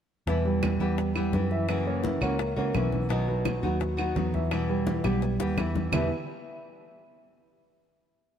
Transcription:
0.27 picked electric bass E2, nylon-string guitar B2 E3 G3 B3 E4, grand piano E3 E4 E5, high bongo
0.45 grand piano G3 G4 B4, high conga
0.63 high bongo, high conga, claves
0.80 picked electric bass E2, nylon-string guitar E3 G3 B3 E4, grand piano G3 G4 B4, high bongo
0.98 muted nylon-string guitar stroke, high bongo, high conga
1.15 nylon-string guitar E3 G3 B3 E4, grand piano G3 G4 B4, high bongo, high conga, claves
1.33 picked electric bass F#2, nylon-string guitar E3 B3 E4, high bongo, low bongo, high conga
1.51 grand piano E3 E4 E5, high bongo
1.68 nylon-string guitar C#3 E3 A#3 C#4 F#4, high bongo, high conga, claves
1.86 grand piano A#3 A#4 C#5, high conga
2.04 grand piano E3 E4 E5, high bongo, high conga
2.21 picked electric bass C#2, nylon-string guitar E3 A#3 C#4 F#4, grand piano A#3 A#4 C#5, high bongo, high conga, claves
2.39 muted nylon-string guitar stroke, high bongo, high conga
2.56 picked electric bass C#2, nylon-string guitar E3 A#3 C#4 F#4, grand piano A#3 A#4 C#5, high bongo, high conga
2.73 picked electric bass B1, nylon-string guitar E3 A#3 C#4 F#4, grand piano E3 E4 E5, high bongo, low bongo, high conga, claves
2.92 high bongo, high conga
3.09 nylon-string guitar B2 F#3 B3 D#4 F#4, grand piano D#3 D#4 D#5, high bongo, high conga
3.28 grand piano F#3 F#4 B4, high conga
3.45 high bongo, high conga, claves
3.63 picked electric bass D#2, grand piano F#3 F#4 B4, nylon-string guitar F#3 B3 D#4 F#4, high bongo
3.80 muted nylon-string guitar stroke, high bongo, high conga
3.97 grand piano F#3 F#4 B4, nylon-string guitar F#3 B3 D#4 F#4, high bongo, high conga, claves
4.15 picked electric bass E2, nylon-string guitar F#3 B3 D#4 F#4, high bongo, low bongo, high conga
4.34 grand piano E3 E5, high bongo, high conga
4.51 nylon-string guitar B2 E3 G3 B3 E4, high bongo, claves
4.69 grand piano G3 G4 B4, high conga
4.87 grand piano E3 E4 E5, high bongo, high conga
5.04 picked electric bass B1, nylon-string guitar E3 G3 B3 E4, grand piano G3 G4 B4, high bongo, high conga, claves
5.22 muted nylon-string guitar stroke, high bongo, high conga
5.39 picked electric bass D#2, nylon-string guitar E3 G3 B3 E4, grand piano G3 G4 B4, high bongo
5.57 picked electric bass E2, nylon-string guitar E3 G3 B3 E4, grand piano E3 E4 E5, low bongo, high conga, claves
5.75 low bongo, high conga
5.92 nylon-string guitar E2 B2 E3 G3 B3 E4, picked electric bass E2, grand piano E3 B3 E4 G4 B4 E5, low bongo, low conga, claves

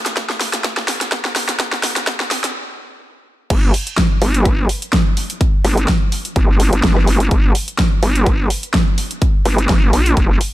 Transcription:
0.06 snare, closed hi-hat
0.17 kick, snare, closed hi-hat
0.30 snare
0.41 snare, open hi-hat
0.53 snare, closed hi-hat
0.64 kick, snare, closed hi-hat
0.77 snare
0.88 snare, open hi-hat
1.01 snare, closed hi-hat
1.12 kick, snare, closed hi-hat
1.25 snare
1.36 snare, open hi-hat
1.49 snare, closed hi-hat
1.60 kick, snare, closed hi-hat
1.73 snare
1.83 snare, open hi-hat
1.96 snare, closed hi-hat
2.07 kick, snare, closed hi-hat
2.20 snare
2.31 snare, open hi-hat
2.44 snare, closed hi-hat
3.50 wobble bass G1, kick, closed hi-hat, crash
3.74 open hi-hat
3.87 closed hi-hat
3.98 kick, snare, closed hi-hat
4.22 wobble bass G1, open hi-hat
4.34 closed hi-hat
4.45 kick, cross-stick, closed hi-hat
4.69 open hi-hat
4.82 closed hi-hat
4.93 kick, snare, closed hi-hat
5.17 open hi-hat
5.30 closed hi-hat
5.41 kick, closed hi-hat
5.65 wobble bass G1, cross-stick, open hi-hat
5.77 closed hi-hat
5.88 kick, snare, closed hi-hat
6.12 open hi-hat
6.25 closed hi-hat
6.36 wobble bass G1, kick, closed hi-hat
6.60 open hi-hat
6.73 wobble bass G1, closed hi-hat
6.83 wobble bass G1, kick, snare, closed hi-hat
6.96 cross-stick, snare
7.07 open hi-hat
7.20 closed hi-hat
7.31 wobble bass G1, kick, closed hi-hat
7.55 open hi-hat
7.68 closed hi-hat
7.79 kick, snare, closed hi-hat
8.03 wobble bass G1, open hi-hat
8.16 closed hi-hat
8.26 kick, cross-stick, closed hi-hat
8.50 open hi-hat
8.63 closed hi-hat
8.74 kick, snare, closed hi-hat
8.98 open hi-hat
9.11 closed hi-hat
9.22 kick, closed hi-hat
9.45 wobble bass G1, cross-stick, open hi-hat
9.58 closed hi-hat
9.69 wobble bass G1, kick, snare, closed hi-hat
9.93 wobble bass A#1, open hi-hat
10.06 closed hi-hat
10.17 wobble bass F1, kick, closed hi-hat
10.41 open hi-hat

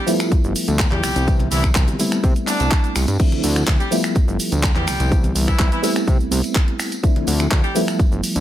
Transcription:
0.07 reed electric piano F3 G3 A3 B3 E4, open hi-hat, tambourine, shaker
0.20 finger snap, closed hi-hat, tambourine, shaker
0.32 analog synth bass G1, kick, closed hi-hat, tambourine, shaker
0.44 analog synth bass G1, shaker
0.56 open hi-hat, tambourine, shaker
0.68 analog synth bass D2, closed hi-hat, tambourine, shaker
0.79 kick, clap, closed hi-hat, shaker
0.91 analog synth bass E2, horn section G3 G4, clap, closed hi-hat, high conga
1.03 analog synth bass C2, finger snap, open hi-hat, tambourine, shaker
1.16 analog synth bass C2, closed hi-hat, tambourine, shaker
1.27 reed electric piano E3 G3 B3 C4 E4, kick, closed hi-hat, tambourine, shaker
1.40 closed hi-hat, high conga
1.51 analog synth bass C2, horn section E3 E4, open hi-hat, tambourine, shaker
1.64 finger snap, kick, closed hi-hat, tambourine, shaker
1.75 analog synth bass C2, kick, clap, closed hi-hat, tambourine, shaker
1.88 closed hi-hat, high conga, shaker
1.99 reed electric piano G3 A3 B3 C4 E4, open hi-hat, tambourine, shaker
2.12 finger snap, closed hi-hat, tambourine, shaker
2.24 analog synth bass C3, kick, closed hi-hat, tambourine, shaker
2.36 closed hi-hat, shaker
2.47 horn section D3 D4, clap, open hi-hat, tambourine, shaker
2.60 analog synth bass C2, closed hi-hat, tambourine, shaker
2.71 kick, clap, closed hi-hat, shaker
2.84 closed hi-hat, shaker
2.96 analog synth bass C2, finger snap, open hi-hat, tambourine, shaker
3.08 analog synth bass G2, closed hi-hat, tambourine, shaker
3.19 reed electric piano F3 A3 C4 D4 E4, kick, closed hi-hat, crash, tambourine, shaker
3.32 closed hi-hat, high conga
3.43 analog synth bass D2, open hi-hat, tambourine, shaker
3.56 finger snap, closed hi-hat, tambourine, shaker
3.67 analog synth bass D2, kick, clap, closed hi-hat, shaker
3.80 horn section G3 G4, closed hi-hat, shaker
3.91 reed electric piano F3 G3 A3 B3 E4, open hi-hat, tambourine, shaker
4.04 finger snap, closed hi-hat, tambourine, shaker
4.15 analog synth bass G1, kick, closed hi-hat, tambourine, shaker
4.28 analog synth bass G1, shaker
4.39 open hi-hat, tambourine, shaker
4.52 analog synth bass D2, closed hi-hat, tambourine, shaker
4.63 kick, clap, closed hi-hat, shaker
4.75 analog synth bass E2, horn section G3 G4, clap, closed hi-hat, high conga
4.87 analog synth bass C2, finger snap, open hi-hat, tambourine, shaker
5.00 analog synth bass C2, closed hi-hat, tambourine, shaker
5.11 reed electric piano E3 G3 B3 C4 E4, kick, closed hi-hat, tambourine, shaker
5.24 closed hi-hat, high conga, shaker
5.35 analog synth bass C2, open hi-hat, tambourine, shaker
5.48 horn section E3 E4, finger snap, kick, closed hi-hat, tambourine, shaker
5.59 analog synth bass C2, kick, clap, closed hi-hat, shaker
5.72 horn section E3 E4, closed hi-hat, shaker
5.82 horn section E3 E4, reed electric piano G3 A3 B3 C4 E4, open hi-hat, tambourine, shaker
5.96 finger snap, closed hi-hat, tambourine, shaker
6.08 analog synth bass C3, kick, closed hi-hat, tambourine, shaker
6.20 analog synth bass C2, shaker
6.31 analog synth bass C2, open hi-hat, tambourine, shaker
6.43 closed hi-hat, tambourine, shaker
6.55 kick, clap, closed hi-hat, shaker
6.68 closed hi-hat
6.80 finger snap, open hi-hat, tambourine, shaker
6.92 closed hi-hat, tambourine, shaker
7.03 reed electric piano F3 A3 C4 D4 E4, kick, closed hi-hat, tambourine, shaker
7.16 closed hi-hat, high conga
7.27 analog synth bass D2, open hi-hat, tambourine, shaker
7.40 finger snap, closed hi-hat, tambourine, shaker
7.51 analog synth bass D2, kick, clap, closed hi-hat, shaker
7.64 horn section G3 G4, closed hi-hat, shaker
7.75 reed electric piano F3 G3 A3 B3 E4, open hi-hat, tambourine, shaker
7.88 finger snap, closed hi-hat, tambourine, shaker
7.99 analog synth bass G1, kick, closed hi-hat, shaker
8.12 analog synth bass G1, shaker
8.24 open hi-hat, tambourine, shaker
8.35 analog synth bass D2, closed hi-hat, tambourine, shaker

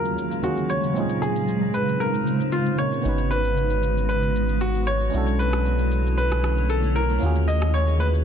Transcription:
Already playing: ambient pad D#2 C#3 F#3 G#3 F5, fm electric piano D#3 A#3 C#4 F4 F#4 G#4, grand piano A#4
0.05 shaker
0.18 shaker
0.31 shaker
0.42 fm electric piano D#3 A#3 C#4 F4 F#4 G#4, grand piano F#4, shaker
0.57 shaker
0.70 grand piano C#5, shaker
0.84 shaker
0.93 fm electric piano A#2 C4 C#4, ambient pad D#4 C5, shaker
0.97 fm electric piano D#4 F4 G#4
1.09 shaker
1.22 grand piano G#4, shaker
1.36 shaker
1.48 shaker
1.74 grand piano B4, shaker
1.89 shaker
2.00 grand piano A#4, shaker
2.14 shaker
2.27 shaker
2.40 shaker
2.52 grand piano F4, shaker
2.66 shaker
2.77 fm electric piano A#2 C4 C#4 D#4 F4 A#4, grand piano C#5, shaker
2.92 shaker
3.01 sub bass G#1, ambient pad G#3 B3 F#4, fm electric piano B3 C#4 D#4, shaker
3.07 fm electric piano F#4 B4
3.18 shaker
3.31 grand piano B4, shaker
3.44 shaker
3.57 shaker
3.70 shaker
3.83 shaker
3.97 shaker
4.09 grand piano B4, shaker
4.23 shaker
4.36 shaker
4.49 shaker
4.61 grand piano F#4, shaker
4.75 shaker
4.87 grand piano C#5, shaker
5.01 shaker
5.10 sub bass B1, ambient pad D3 A3 E4 C#5, fm electric piano C#4 D4 E4, shaker
5.16 fm electric piano F#4 A4
5.27 shaker
5.39 grand piano B4, shaker
5.53 cross-stick, shaker
5.66 shaker
5.79 shaker
5.92 shaker
6.06 shaker
6.17 grand piano B4, shaker
6.31 cross-stick, shaker
6.44 cross-stick, shaker
6.58 shaker
6.69 grand piano A4, shaker
6.83 shaker
6.96 grand piano A#4, shaker
7.10 shaker
7.19 sub bass D#2, ambient pad C#3 F#3 G#3 F5, fm electric piano A#3 C#4 F4, shaker
7.24 fm electric piano F#4 G#4
7.35 shaker
7.48 grand piano D#5, shaker
7.62 cross-stick, shaker
7.74 grand piano C#5, shaker
7.87 shaker
8.00 grand piano B4, shaker
8.15 shaker

